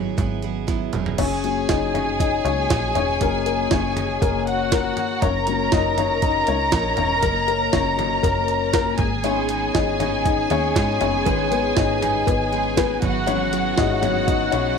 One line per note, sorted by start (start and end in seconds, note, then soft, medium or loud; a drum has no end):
0.00 0.15 G#1 loud
0.00 0.16 F#3 medium
0.00 1.21 F#3 medium
0.00 1.21 G#3 soft
0.00 0.17 B3 medium
0.00 0.65 B3 medium
0.00 0.17 E4 medium
0.00 1.21 E4 medium
0.00 0.17 G#4 medium
0.00 0.64 B4 medium
0.17 0.90 G#1 loud
0.17 0.41 F#3 medium
0.17 0.42 B3 medium
0.17 0.42 E4 medium
0.17 0.43 G#4 medium
0.17 kick loud
0.17 closed hi-hat medium
0.42 0.66 F#3 medium
0.42 0.66 B3 medium
0.42 0.67 E4 medium
0.42 0.68 G#4 medium
0.42 closed hi-hat medium
0.67 0.92 F#3 medium
0.67 0.92 B3 medium
0.67 0.93 E4 medium
0.67 0.93 G#4 medium
0.67 kick loud
0.67 snare medium
0.67 closed hi-hat medium
0.93 1.17 E1 medium
0.93 1.18 F#3 medium
0.93 1.19 B3 medium
0.93 1.19 E4 medium
0.93 1.19 G#4 medium
0.93 closed hi-hat medium
0.93 mid tom medium
1.06 floor tom medium
1.18 1.66 F#1 loud
1.18 1.44 C#4 medium
1.18 4.42 G#4 medium
1.18 1.71 C#5 medium
1.18 4.42 G#5 medium
1.18 kick loud
1.18 closed hi-hat medium
1.18 crash medium
1.44 2.16 F#3 medium
1.44 2.16 A#3 medium
1.44 1.94 C#4 medium
1.44 closed hi-hat medium
1.69 2.41 F#1 loud
1.69 1.93 D#4 medium
1.69 1.92 D#5 medium
1.69 kick loud
1.69 snare loud
1.69 closed hi-hat medium
1.94 2.19 C#4 medium
1.94 2.20 C#5 medium
1.94 closed hi-hat medium
1.94 floor tom medium
2.20 2.44 D#4 medium
2.20 2.46 D#5 medium
2.20 kick loud
2.20 closed hi-hat loud
2.45 2.68 C#2 loud
2.45 2.68 F#3 soft
2.45 2.68 A#3 soft
2.45 2.92 C#4 medium
2.45 2.94 C#5 medium
2.45 closed hi-hat medium
2.70 2.94 A#1 loud
2.70 kick loud
2.70 snare loud
2.70 closed hi-hat medium
2.95 3.19 E1 loud
2.95 3.19 C#4 medium
2.95 3.19 C#5 medium
2.95 closed hi-hat medium
2.95 floor tom medium
3.21 3.68 F#1 medium
3.21 3.93 F#3 medium
3.21 3.45 A#3 medium
3.21 3.71 C#4 medium
3.21 3.45 A#4 medium
3.21 kick loud
3.21 closed hi-hat medium
3.46 3.70 A#3 medium
3.46 3.72 A#4 medium
3.46 closed hi-hat medium
3.71 4.18 F#1 loud
3.71 4.19 C#4 medium
3.71 4.23 C#5 medium
3.71 kick loud
3.71 snare loud
3.71 closed hi-hat medium
3.97 closed hi-hat medium
3.97 floor tom medium
4.22 4.93 F#1 loud
4.22 4.69 A#3 medium
4.22 4.71 A#4 medium
4.22 kick loud
4.22 closed hi-hat loud
4.47 5.21 F#4 medium
4.47 5.21 F#5 medium
4.47 closed hi-hat medium
4.72 5.07 A#3 medium
4.72 5.07 A#4 medium
4.72 kick loud
4.72 snare loud
4.72 closed hi-hat loud
4.97 closed hi-hat medium
4.97 floor tom medium
5.22 5.69 F#1 loud
5.22 5.47 C#4 medium
5.22 8.95 A#4 medium
5.22 5.74 C#5 medium
5.22 8.96 A#5 loud
5.22 kick loud
5.22 closed hi-hat loud
5.47 6.19 F#3 medium
5.47 6.19 A#3 medium
5.47 5.98 C#4 medium
5.47 closed hi-hat medium
5.72 6.44 F#1 loud
5.72 5.96 D#4 medium
5.72 5.96 D#5 loud
5.72 kick loud
5.72 snare loud
5.72 closed hi-hat medium
5.98 6.22 C#4 medium
5.98 6.21 C#5 medium
5.98 closed hi-hat medium
5.98 floor tom medium
6.22 6.46 D#4 medium
6.22 6.46 D#5 loud
6.22 kick loud
6.22 closed hi-hat loud
6.47 6.71 C#2 medium
6.47 6.95 C#4 medium
6.47 6.95 C#5 loud
6.47 closed hi-hat medium
6.72 6.96 A#1 loud
6.72 kick loud
6.72 snare loud
6.72 closed hi-hat medium
6.97 7.21 E1 loud
6.97 7.04 C#4 medium
6.97 7.03 C#5 medium
6.97 closed hi-hat medium
6.97 floor tom medium
7.22 7.70 F#1 medium
7.22 7.46 A#3 medium
7.22 7.46 A#4 medium
7.22 kick loud
7.22 closed hi-hat loud
7.48 7.72 A#3 medium
7.48 7.74 A#4 medium
7.48 closed hi-hat medium
7.73 8.20 F#1 loud
7.73 7.97 C#4 medium
7.73 8.25 C#5 medium
7.73 kick loud
7.73 snare loud
7.73 closed hi-hat medium
7.97 8.70 F#3 medium
7.97 8.22 A#3 soft
7.97 8.70 C#4 medium
7.97 closed hi-hat medium
7.97 floor tom medium
8.23 8.95 F#1 loud
8.23 8.70 A#3 medium
8.23 8.72 A#4 medium
8.23 kick loud
8.23 closed hi-hat loud
8.48 closed hi-hat medium
8.73 9.09 A#3 medium
8.73 9.09 A#4 loud
8.73 kick loud
8.73 snare loud
8.73 closed hi-hat medium
8.98 9.71 G#1 loud
8.98 12.98 G#4 medium
8.98 12.98 G#5 medium
8.98 kick loud
8.98 closed hi-hat medium
8.98 floor tom medium
9.23 9.49 G#2 medium
9.23 9.49 D#3 medium
9.23 9.96 G#3 medium
9.23 9.47 G#3 medium
9.23 9.48 B3 loud
9.23 9.96 B3 soft
9.23 9.72 C#4 medium
9.23 9.48 D#4 medium
9.23 9.73 D#4 medium
9.23 9.49 G#4 loud
9.23 9.76 C#5 medium
9.23 closed hi-hat medium
9.48 10.00 G#3 medium
9.48 10.00 B3 medium
9.48 10.00 D#4 medium
9.48 10.01 G#4 medium
9.48 closed hi-hat medium
9.74 10.47 G#1 loud
9.74 9.98 D#4 medium
9.74 10.00 D#5 loud
9.74 kick loud
9.74 snare loud
9.74 closed hi-hat medium
10.00 10.49 G#3 medium
10.00 10.50 B3 medium
10.00 10.24 C#4 medium
10.00 10.50 D#4 medium
10.00 10.51 G#4 medium
10.00 10.26 C#5 medium
10.00 closed hi-hat medium
10.00 floor tom medium
10.25 10.49 D#4 medium
10.25 10.49 D#5 loud
10.25 kick loud
10.25 closed hi-hat medium
10.50 10.74 D#2 loud
10.50 10.74 G#3 medium
10.50 10.75 B3 medium
10.50 10.98 C#4 medium
10.50 10.75 D#4 medium
10.50 10.76 G#4 medium
10.50 10.99 C#5 loud
10.50 closed hi-hat medium
10.75 10.99 G#2 loud
10.75 10.99 G#3 medium
10.75 11.00 B3 medium
10.75 11.00 D#4 medium
10.75 11.01 G#4 medium
10.75 kick loud
10.75 snare loud
10.75 closed hi-hat medium
11.01 11.24 F#1 loud
11.01 11.25 G#3 medium
11.01 12.98 G#3 medium
11.01 11.25 B3 medium
11.01 11.25 C#4 medium
11.01 11.76 D#4 medium
11.01 11.25 D#4 medium
11.01 11.26 G#4 medium
11.01 11.27 C#5 medium
11.01 closed hi-hat medium
11.01 floor tom medium
11.25 11.73 G#1 loud
11.25 11.51 G#2 medium
11.25 11.51 D#3 medium
11.25 11.50 G#3 loud
11.25 11.50 B3 loud
11.25 11.50 B3 medium
11.25 11.51 D#4 medium
11.25 11.51 G#4 medium
11.25 11.49 B4 medium
11.25 kick loud
11.25 closed hi-hat medium
11.51 12.01 G#3 medium
11.51 12.02 B3 medium
11.51 11.75 B3 medium
11.51 12.01 D#4 medium
11.51 12.03 G#4 medium
11.51 11.77 B4 medium
11.51 closed hi-hat medium
11.76 12.23 G#1 loud
11.76 12.23 D#4 medium
11.76 12.23 D#5 loud
11.76 kick loud
11.76 snare loud
11.76 closed hi-hat medium
12.01 12.52 G#3 medium
12.01 12.52 B3 medium
12.01 12.52 D#4 medium
12.01 12.54 G#4 medium
12.01 closed hi-hat medium
12.01 floor tom medium
12.27 12.99 G#1 loud
12.27 12.74 B3 medium
12.27 12.76 B4 loud
12.27 kick loud
12.27 closed hi-hat loud
12.52 12.75 G#3 medium
12.52 12.76 B3 medium
12.52 12.76 D#4 medium
12.52 12.77 G#4 medium
12.52 closed hi-hat medium
12.76 13.01 G#3 medium
12.76 13.01 B3 medium
12.76 13.12 B3 medium
12.76 13.02 D#4 medium
12.76 13.02 G#4 medium
12.76 13.12 B4 loud
12.76 kick loud
12.76 snare loud
12.76 closed hi-hat medium
13.01 13.74 G#1 loud
13.01 13.26 F#3 medium
13.01 13.27 B3 medium
13.01 13.27 E4 medium
13.01 14.78 F#4 medium
13.01 13.27 G#4 medium
13.01 14.78 F#5 medium
13.01 kick loud
13.01 closed hi-hat medium
13.01 floor tom medium
13.26 13.52 G#2 medium
13.26 13.52 E3 medium
13.26 13.50 F#3 loud
13.26 13.51 B3 medium
13.26 13.74 C#4 medium
13.26 13.51 E4 medium
13.26 13.52 G#4 loud
13.26 13.79 C#5 loud
13.26 closed hi-hat medium
13.51 14.01 F#3 medium
13.51 14.01 B3 medium
13.51 14.02 E4 medium
13.51 14.02 G#4 medium
13.51 closed hi-hat medium
13.77 14.49 G#1 loud
13.77 14.11 F#3 medium
13.77 14.11 G#3 medium
13.77 14.02 D#4 medium
13.77 14.11 E4 medium
13.77 14.04 D#5 loud
13.77 kick loud
13.77 snare loud
13.77 closed hi-hat medium
14.02 14.52 F#3 medium
14.02 14.52 B3 medium
14.02 14.26 C#4 medium
14.02 14.53 E4 medium
14.02 14.53 G#4 medium
14.02 14.26 C#5 medium
14.02 closed hi-hat medium
14.02 floor tom medium
14.27 14.51 D#4 medium
14.27 14.51 D#5 loud
14.27 kick loud
14.27 closed hi-hat loud
14.52 14.76 B1 medium
14.52 14.76 F#3 medium
14.52 14.77 B3 medium
14.52 14.78 C#4 medium
14.52 14.77 E4 medium
14.52 14.78 G#4 medium
14.52 14.78 C#5 loud
14.52 closed hi-hat medium